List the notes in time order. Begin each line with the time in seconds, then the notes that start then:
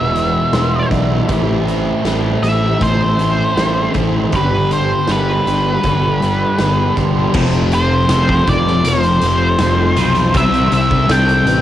Already playing: E1 E2 B2 E3 G#3 B3 E4 B4 E5
0.13 B2 E3 G#3 B3 E4, closed hi-hat
0.52 E1 E3 G#3 B3 E4 C6, snare, closed hi-hat
0.90 B1 B2 E3 G#3 B3 E4 D5, kick, closed hi-hat
1.27 A1 A2 E3 A3 C4 E4 G4, kick, closed hi-hat
1.67 A3 C4 E4, closed hi-hat
2.03 A1 A2 E3 A3 C4 A4, snare, closed hi-hat
2.07 E4
2.42 A1 A3 C4 E4 G4 E5, closed hi-hat
2.79 A1 A2 E3 A3 C4 E4 A4 C5, kick, closed hi-hat
3.17 E3 A3 C4 E4, closed hi-hat
3.21 A3
3.56 A1 E3 A3 C4 E4 B5, snare, closed hi-hat
3.93 A1 A3 C4 E4 C5, kick, closed hi-hat
3.97 E3
4.32 G1 G2 D3 G3 B3 D4 G4 B4, kick, closed hi-hat
4.71 G3 B3 D4 G4 C5, closed hi-hat
5.08 G1 G2 D3 G3 B3 D4 G4 A4 B4, snare, closed hi-hat
5.46 G1 G3 B3 D4 G4, closed hi-hat
5.83 G1 G2 D3 G3 B3 D4 G4 A4, kick, closed hi-hat
6.20 D3 G3 B3 D4 G4, closed hi-hat
6.59 G1 G3 B3 D4 G4 B4, snare, closed hi-hat
6.96 G1 D3 G3 B3 D4 G4 C6, kick, closed hi-hat
7.34 F1 F2 C3 F3 C5, kick, crash
7.52 closed hi-hat
7.72 C5, closed hi-hat
8.09 F1 F2 C3 F3 A4, snare, closed hi-hat
8.29 kick
8.47 F1 F3 C5 D5, kick, closed hi-hat
8.52 C3
8.67 snare
8.84 F1 A4 C5, closed hi-hat
9.03 closed hi-hat
9.21 F1 F3, closed hi-hat
9.27 C3
9.59 F1 F2 C3 A4, snare, closed hi-hat
9.63 F3
9.96 B1 F2 C3 F3 B5, closed hi-hat
10.15 closed hi-hat
10.34 C2 C3 G3 C5 E5, kick, closed hi-hat
10.39 C4
10.54 closed hi-hat
10.71 C2 E5, closed hi-hat
10.91 kick
11.08 C2 C3 G3 C4 A4 G5, snare, closed hi-hat
11.28 closed hi-hat
11.46 A1 G3 C4 B4, closed hi-hat